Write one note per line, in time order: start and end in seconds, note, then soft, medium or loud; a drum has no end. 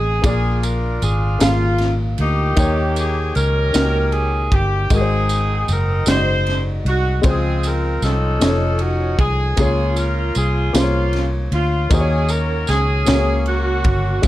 0.00 0.21 A1 medium
0.00 0.12 C4 medium
0.00 0.13 G#4 medium
0.00 0.26 G#4 medium
0.00 0.13 C5 medium
0.00 0.14 D#5 medium
0.22 0.98 A#1 loud
0.22 1.37 A#2 medium
0.22 1.29 A#3 medium
0.22 1.29 F4 medium
0.22 1.30 G#4 medium
0.22 1.31 D5 medium
0.22 kick loud
0.22 ride medium
0.22 tambourine medium
0.26 1.38 D4 medium
0.26 1.38 F4 medium
0.26 0.62 G#4 medium
0.63 1.02 A#4 medium
0.63 ride soft
0.63 tambourine soft
1.02 1.38 G#1 medium
1.02 1.38 G#4 medium
1.02 ride soft
1.02 tambourine medium
1.39 2.15 G#1 loud
1.39 2.46 A#3 medium
1.39 2.46 F4 medium
1.39 1.92 F4 medium
1.39 2.47 G#4 medium
1.39 2.47 F5 medium
1.39 snare loud
1.39 ride medium
1.39 tambourine medium
1.78 snare soft
1.78 ride soft
2.18 2.54 D2 medium
2.18 3.32 A#3 medium
2.18 2.94 D#4 medium
2.18 3.32 G4 medium
2.18 ride soft
2.56 3.31 D#2 loud
2.56 3.70 D#3 medium
2.56 3.63 A#3 medium
2.56 3.63 D#4 medium
2.56 3.64 C#5 medium
2.56 3.64 G5 medium
2.56 kick loud
2.56 ride medium
2.56 tambourine medium
2.96 3.37 G#4 medium
2.96 ride soft
2.96 tambourine medium
3.35 3.71 C#2 medium
3.35 4.49 C#4 medium
3.35 4.48 G4 medium
3.35 4.13 A#4 loud
3.35 ride soft
3.35 tambourine medium
3.73 4.48 C#2 medium
3.73 4.79 A#3 medium
3.73 4.80 D#4 medium
3.73 3.81 F#4 medium
3.73 4.81 A#4 medium
3.73 snare loud
3.73 ride medium
3.73 tambourine medium
3.82 4.84 G5 medium
4.12 4.52 G#4 medium
4.12 ride soft
4.52 4.88 G1 medium
4.52 4.92 G4 medium
4.52 kick medium
4.52 ride soft
4.90 5.64 G#1 loud
4.90 6.04 G#2 medium
4.90 5.97 G#3 medium
4.90 5.97 D#4 medium
4.90 5.98 F#4 medium
4.90 4.99 A#4 medium
4.90 kick loud
4.90 ride medium
4.90 tambourine medium
4.95 6.06 C4 medium
4.95 6.06 D#4 medium
4.95 5.67 G#4 medium
5.01 6.02 C5 medium
5.29 ride soft
5.29 tambourine medium
5.68 6.04 F#1 medium
5.68 6.09 A#4 medium
5.68 ride soft
5.68 tambourine medium
6.06 6.81 F#1 medium
6.06 7.13 G#3 medium
6.06 7.14 D#4 medium
6.06 7.14 F#4 medium
6.06 6.59 C5 loud
6.06 snare loud
6.06 ride medium
6.06 tambourine medium
6.10 6.15 D5 medium
6.17 7.18 D#5 medium
6.46 snare soft
6.46 ride soft
6.85 7.21 C2 medium
6.85 7.23 F#4 medium
6.85 ride soft
7.22 7.98 C#2 loud
7.22 8.36 F3 medium
7.22 8.29 G#3 medium
7.22 8.29 C4 medium
7.22 8.30 F4 medium
7.22 8.30 C5 medium
7.22 kick loud
7.22 ride medium
7.22 tambourine medium
7.28 8.38 C4 medium
7.28 8.38 F4 medium
7.28 7.65 G#4 medium
7.63 8.03 A#4 medium
7.63 ride soft
7.63 tambourine soft
8.02 8.38 C2 medium
8.02 9.16 C#4 medium
8.02 9.16 D#4 medium
8.02 8.81 A4 loud
8.02 snare soft
8.02 ride soft
8.02 tambourine soft
8.40 9.15 F1 loud
8.40 9.47 F3 medium
8.40 9.46 A3 medium
8.40 9.47 D#4 medium
8.40 9.48 C#5 medium
8.40 snare loud
8.40 ride medium
8.40 tambourine medium
8.79 9.19 F#4 medium
8.79 ride soft
9.19 9.54 C2 medium
9.19 9.58 G#4 medium
9.19 kick medium
9.19 ride soft
9.56 10.31 C#2 medium
9.56 10.63 A#3 medium
9.56 10.70 C#4 medium
9.56 10.64 F4 medium
9.56 10.71 F4 medium
9.56 10.64 G#4 medium
9.56 9.94 G#4 medium
9.56 kick loud
9.56 ride medium
9.56 tambourine medium
9.61 10.65 C#5 medium
9.96 10.36 A#4 medium
9.96 ride soft
9.96 tambourine soft
10.35 10.71 C2 medium
10.35 10.72 G#4 medium
10.35 ride soft
10.35 tambourine medium
10.73 11.48 C2 loud
10.73 11.79 A#3 medium
10.73 11.25 F4 medium
10.73 11.80 F4 medium
10.73 11.80 G#4 medium
10.73 10.81 C5 medium
10.73 snare loud
10.73 ride medium
10.73 tambourine medium
10.83 11.84 C#5 medium
11.13 snare soft
11.13 ride soft
11.52 11.87 D2 medium
11.52 11.89 F4 medium
11.52 ride soft
11.90 12.64 D#2 loud
11.90 13.04 D#3 medium
11.90 12.96 A#3 medium
11.90 12.69 C#4 medium
11.90 12.96 D#4 medium
11.90 12.97 F#4 medium
11.90 12.30 G#4 medium
11.90 11.98 C5 medium
11.90 kick loud
11.90 ride medium
11.90 tambourine medium
12.00 13.01 C#5 medium
12.29 12.69 A#4 medium
12.29 ride soft
12.29 tambourine medium
12.67 13.04 C#2 medium
12.67 13.48 C#4 medium
12.67 13.42 G#4 loud
12.67 snare soft
12.67 ride soft
12.67 tambourine medium
13.05 13.81 C#2 loud
13.05 14.19 C#3 medium
13.05 13.12 A3 medium
13.05 14.13 C#4 medium
13.05 14.13 F#4 medium
13.05 14.14 C#5 medium
13.05 snare loud
13.05 ride medium
13.05 tambourine medium
13.12 14.15 A#3 medium
13.46 14.21 A#3 medium
13.46 14.21 C#4 medium
13.46 14.21 F#4 loud
13.46 ride soft
13.84 14.20 G1 medium
13.84 kick medium
13.84 ride soft
14.22 14.28 G#1 loud
14.22 14.28 G#2 medium
14.22 14.28 G#3 medium
14.22 14.28 C#4 medium
14.22 14.28 F4 medium
14.22 kick loud
14.22 ride medium
14.22 tambourine medium